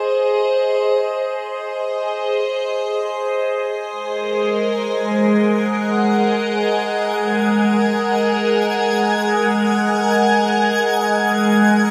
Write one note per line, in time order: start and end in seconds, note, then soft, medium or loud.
0.00 11.91 G#4 medium
0.00 5.07 C5 medium
0.00 11.91 D#5 medium
3.88 11.91 G#3 medium
3.88 11.91 G#5 medium
3.88 11.91 G#6 medium
4.01 11.91 A#4 medium
5.16 11.91 F#5 medium